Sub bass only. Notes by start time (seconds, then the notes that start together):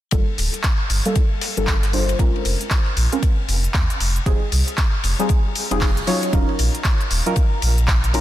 0.12 G1
0.38 D1
0.90 G1
1.57 G1
2.19 A#1
2.45 F1
2.97 A#1
3.48 F1
3.74 D#2
4.00 F1
4.26 F1
4.52 C2
5.04 F1
5.71 F1
6.33 D#1
6.59 A#1
7.11 D#1
7.62 A#1